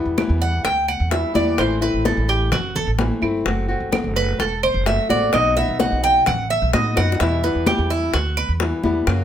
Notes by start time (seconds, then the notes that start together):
Already playing: E3 G3 B3 E4
0.06 E2
0.17 E3 G3 B3 E4, high bongo, high conga, claves
0.29 E2
0.41 F#5, high conga
0.64 D2 G5, muted nylon-string guitar stroke, high bongo, high conga
0.88 F#5, high conga, claves
1.00 E2
1.10 E3 G3 B3 E4 E5, high bongo, low bongo, high conga
1.34 E2 E3 G3 B3 E4 D5, high conga
1.58 A1 E3 A3 C4 E4 C5, high bongo, claves
1.81 A3 C4 E4 B4, high bongo, high conga
1.94 A1
2.05 E3 A3 C4 E4 A4, high bongo, high conga
2.17 A1
2.28 G4, high bongo
2.51 F#1 F#4, muted nylon-string guitar stroke, high bongo, high conga, low conga, claves
2.75 A4, high bongo, high conga, low conga
2.87 A1
2.98 E3 A3 C4 E4, high bongo, low bongo, high conga
3.22 G1 A3 C4 E4, high conga, claves
3.45 F#1 F#3 A3 C4 F#4, high bongo, high conga
3.68 A3 C4 F#4, high conga
3.80 F#1
3.91 F#3 A3 C4 F#4, high bongo, high conga, claves
4.04 F#1
4.16 B4, high conga
4.39 E1 A4, muted nylon-string guitar stroke, high bongo, high conga
4.63 C5, high conga, claves
4.74 F#1
4.86 F#3 A3 C4 F#4 E5, high bongo, low bongo, high conga
5.09 A1 A3 C4 F#4 D5, high conga
5.33 B1 B2 F#3 B3 D#4 F#4 D#5, high bongo, high conga, claves
5.56 F#3 B3 D#4 F#4 E5, high bongo, high conga
5.68 B1
5.79 F#3 B3 D#4 F#4 F#5, high bongo, high conga
5.92 B1
6.03 G5, high bongo
6.26 A1 F#5, muted nylon-string guitar stroke, high bongo, high conga, low conga, claves
6.50 E5, high bongo, high conga
6.62 B1
6.73 A2 F#3 B3 D#4 F#4 D#5, high bongo, low bongo, high conga
6.96 F#2 F#3 B3 D#4 F#4 F#5, high bongo, high conga, claves
7.12 low bongo
7.20 E2 B2 E3 G3 B3 E4 E5, high bongo, high conga
7.43 E3 G3 B3 E4 B4, high conga
7.55 E2
7.66 E3 G3 B3 E4 G4, high bongo, high conga, claves
7.78 E2
7.90 E4, high conga
8.13 D2 F#4, muted nylon-string guitar stroke, high bongo, high conga
8.37 B4, high conga, claves
8.49 E2
8.60 E3 G3 B3 E4, high bongo, low bongo, high conga
8.84 E2 E3 G3 B3 E4, high conga
9.07 F#2 C#3 F#3 A#3 C#4 F#4, high bongo, high conga, claves